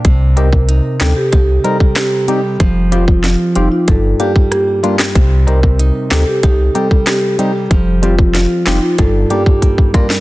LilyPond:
<<
  \new Staff \with { instrumentName = "Marimba" } { \time 4/4 \key c \minor \tempo 4 = 94 r8 bes'16 r8. a'16 g'16 g'16 r16 a'16 r16 g'8. r16 | r8 f'16 r8. ees'16 f'16 a'16 r16 g'16 r16 g'8. r16 | r8 bes'16 r8. a'16 g'16 g'16 r16 a'16 r16 g'8. r16 | r8 f'16 r8. ees'16 f'16 a'16 r16 g'16 r8. bes'16 r16 | }
  \new Staff \with { instrumentName = "Synth stab" } { \time 4/4 \key c \minor r8 <g c' ees' g'>8 r8 <g c' ees' g'>8 r8 <g c' ees' bes'>8 r8 <g c' ees' g'>8 | r8 <g c' f' g'>8 r8 <g c' f' g'>8 r8 <g bes d' g'>8 r8 <g bes d' f'>8 | r8 <g c' ees' g'>8 r8 <g c' ees' g'>8 r8 <g c' ees' g'>8 r8 <g c' ees' g'>8 | r8 <g c' f' g'>8 r8 <g c' f' g'>8 r8 <g bes d' g'>8 r8 <g bes d' f'>8 | }
  \new Staff \with { instrumentName = "Nylon-string guitar" } { \time 4/4 \key c \minor c8 c'8 ees'8 c'8 ees'8 g8 c'8 g8 | f8 c'8 f'8 c'8 g,8 g8 bes8 g8 | c8 c'8 ees'4 ees'8 g8 c'8 g8 | f8 c'8 f'4 g,8 g8 bes8 g8 | }
  \new Staff \with { instrumentName = "Sub bass" } { \clef bass \time 4/4 \key c \minor c,4~ c,16 r16 d,16 r16 c,8 r4. | f,,4~ f,,16 r16 f,,16 r16 g,,8 r4. | c,4~ c,16 r16 d,16 r16 c,8 r4. | f,,4~ f,,16 r16 f,,16 r16 g,,8 r4. | }
  \new DrumStaff \with { instrumentName = "Drums" } \drummode { \time 4/4 <hh bd>8 hh16 bd16 hh8 <hc hh sn>8 <hh bd>8 hh16 bd16 <hc hh ss sn>8 hh8 | <hh bd>8 hh16 bd16 <hh sn>8 hh8 <hh bd>8 hh16 bd16 <hh ss>8 hh16 <hc sn>16 | <hh bd>8 hh16 bd16 hh8 <hc hh sn>8 <hh bd>8 hh16 bd16 <hc hh ss sn>8 hh8 | <hh bd>8 hh16 bd16 <hh sn>8 <hc hh sn>8 <hh bd>8 hh16 bd16 <hh bd>16 bd16 <hh bd>16 sn16 | }
>>